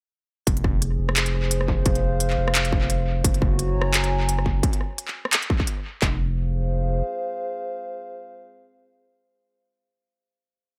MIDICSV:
0, 0, Header, 1, 4, 480
1, 0, Start_track
1, 0, Tempo, 346821
1, 650, Time_signature, 4, 2, 24, 8
1, 14921, End_track
2, 0, Start_track
2, 0, Title_t, "Analog synth pad"
2, 0, Program_c, 0, 89
2, 647, Note_on_c, 0, 68, 99
2, 1055, Note_on_c, 0, 72, 94
2, 2183, Note_on_c, 0, 77, 93
2, 4490, Note_off_c, 0, 72, 0
2, 4497, Note_on_c, 0, 66, 84
2, 4869, Note_on_c, 0, 73, 79
2, 4982, Note_on_c, 0, 82, 93
2, 5129, Note_on_c, 0, 80, 90
2, 5263, Note_off_c, 0, 68, 0
2, 5267, Note_off_c, 0, 77, 0
2, 6409, Note_off_c, 0, 73, 0
2, 6409, Note_off_c, 0, 80, 0
2, 6410, Note_off_c, 0, 82, 0
2, 6414, Note_off_c, 0, 66, 0
2, 8332, Note_on_c, 0, 68, 82
2, 8416, Note_on_c, 0, 72, 85
2, 8484, Note_on_c, 0, 77, 84
2, 13221, Note_off_c, 0, 77, 0
2, 13223, Note_off_c, 0, 68, 0
2, 13224, Note_off_c, 0, 72, 0
2, 14921, End_track
3, 0, Start_track
3, 0, Title_t, "Sub bass"
3, 0, Program_c, 1, 38
3, 650, Note_on_c, 1, 29, 100
3, 1357, Note_off_c, 1, 29, 0
3, 1366, Note_on_c, 1, 29, 102
3, 2555, Note_off_c, 1, 29, 0
3, 2571, Note_on_c, 1, 29, 102
3, 3278, Note_off_c, 1, 29, 0
3, 3289, Note_on_c, 1, 29, 100
3, 4476, Note_off_c, 1, 29, 0
3, 4492, Note_on_c, 1, 30, 102
3, 5198, Note_off_c, 1, 30, 0
3, 5209, Note_on_c, 1, 30, 102
3, 6396, Note_off_c, 1, 30, 0
3, 8332, Note_on_c, 1, 29, 101
3, 9716, Note_off_c, 1, 29, 0
3, 14921, End_track
4, 0, Start_track
4, 0, Title_t, "Drums"
4, 650, Note_on_c, 9, 36, 119
4, 651, Note_on_c, 9, 42, 78
4, 786, Note_off_c, 9, 42, 0
4, 786, Note_on_c, 9, 42, 39
4, 788, Note_off_c, 9, 36, 0
4, 890, Note_on_c, 9, 36, 105
4, 892, Note_on_c, 9, 37, 37
4, 925, Note_off_c, 9, 42, 0
4, 1028, Note_off_c, 9, 36, 0
4, 1030, Note_off_c, 9, 37, 0
4, 1134, Note_on_c, 9, 42, 70
4, 1272, Note_off_c, 9, 42, 0
4, 1505, Note_on_c, 9, 37, 80
4, 1611, Note_on_c, 9, 39, 120
4, 1611, Note_on_c, 9, 42, 85
4, 1643, Note_off_c, 9, 37, 0
4, 1745, Note_off_c, 9, 42, 0
4, 1745, Note_on_c, 9, 42, 39
4, 1749, Note_off_c, 9, 39, 0
4, 1883, Note_off_c, 9, 42, 0
4, 2090, Note_on_c, 9, 42, 67
4, 2224, Note_on_c, 9, 37, 54
4, 2228, Note_off_c, 9, 42, 0
4, 2331, Note_on_c, 9, 36, 61
4, 2362, Note_off_c, 9, 37, 0
4, 2469, Note_off_c, 9, 36, 0
4, 2569, Note_on_c, 9, 42, 79
4, 2571, Note_on_c, 9, 36, 121
4, 2704, Note_off_c, 9, 42, 0
4, 2704, Note_on_c, 9, 42, 39
4, 2709, Note_off_c, 9, 36, 0
4, 2843, Note_off_c, 9, 42, 0
4, 3048, Note_on_c, 9, 42, 69
4, 3186, Note_off_c, 9, 42, 0
4, 3186, Note_on_c, 9, 39, 38
4, 3324, Note_off_c, 9, 39, 0
4, 3427, Note_on_c, 9, 37, 79
4, 3530, Note_on_c, 9, 39, 123
4, 3530, Note_on_c, 9, 42, 86
4, 3566, Note_off_c, 9, 37, 0
4, 3666, Note_off_c, 9, 42, 0
4, 3666, Note_on_c, 9, 42, 39
4, 3668, Note_off_c, 9, 39, 0
4, 3771, Note_on_c, 9, 36, 106
4, 3804, Note_off_c, 9, 42, 0
4, 3909, Note_off_c, 9, 36, 0
4, 4010, Note_on_c, 9, 42, 69
4, 4149, Note_off_c, 9, 42, 0
4, 4490, Note_on_c, 9, 36, 123
4, 4491, Note_on_c, 9, 42, 79
4, 4627, Note_off_c, 9, 42, 0
4, 4627, Note_on_c, 9, 42, 38
4, 4629, Note_off_c, 9, 36, 0
4, 4730, Note_on_c, 9, 36, 109
4, 4733, Note_on_c, 9, 37, 36
4, 4766, Note_off_c, 9, 42, 0
4, 4869, Note_off_c, 9, 36, 0
4, 4872, Note_off_c, 9, 37, 0
4, 4969, Note_on_c, 9, 42, 68
4, 5108, Note_off_c, 9, 42, 0
4, 5280, Note_on_c, 9, 37, 80
4, 5419, Note_off_c, 9, 37, 0
4, 5452, Note_on_c, 9, 39, 126
4, 5452, Note_on_c, 9, 42, 82
4, 5588, Note_off_c, 9, 42, 0
4, 5588, Note_on_c, 9, 42, 38
4, 5590, Note_off_c, 9, 39, 0
4, 5727, Note_off_c, 9, 42, 0
4, 5934, Note_on_c, 9, 42, 65
4, 6069, Note_on_c, 9, 37, 52
4, 6072, Note_off_c, 9, 42, 0
4, 6170, Note_on_c, 9, 36, 64
4, 6208, Note_off_c, 9, 37, 0
4, 6309, Note_off_c, 9, 36, 0
4, 6411, Note_on_c, 9, 36, 120
4, 6413, Note_on_c, 9, 42, 76
4, 6548, Note_off_c, 9, 42, 0
4, 6548, Note_on_c, 9, 42, 37
4, 6549, Note_off_c, 9, 36, 0
4, 6652, Note_on_c, 9, 37, 36
4, 6687, Note_off_c, 9, 42, 0
4, 6791, Note_off_c, 9, 37, 0
4, 6895, Note_on_c, 9, 42, 64
4, 7029, Note_on_c, 9, 39, 39
4, 7034, Note_off_c, 9, 42, 0
4, 7167, Note_off_c, 9, 39, 0
4, 7268, Note_on_c, 9, 37, 73
4, 7372, Note_on_c, 9, 39, 121
4, 7372, Note_on_c, 9, 42, 78
4, 7407, Note_off_c, 9, 37, 0
4, 7508, Note_off_c, 9, 42, 0
4, 7508, Note_on_c, 9, 42, 37
4, 7511, Note_off_c, 9, 39, 0
4, 7612, Note_on_c, 9, 36, 106
4, 7646, Note_off_c, 9, 42, 0
4, 7747, Note_off_c, 9, 36, 0
4, 7747, Note_on_c, 9, 36, 65
4, 7851, Note_on_c, 9, 42, 63
4, 7886, Note_off_c, 9, 36, 0
4, 7989, Note_off_c, 9, 42, 0
4, 8333, Note_on_c, 9, 36, 104
4, 8333, Note_on_c, 9, 38, 103
4, 8333, Note_on_c, 9, 39, 89
4, 8471, Note_off_c, 9, 36, 0
4, 8472, Note_off_c, 9, 38, 0
4, 8472, Note_off_c, 9, 39, 0
4, 14921, End_track
0, 0, End_of_file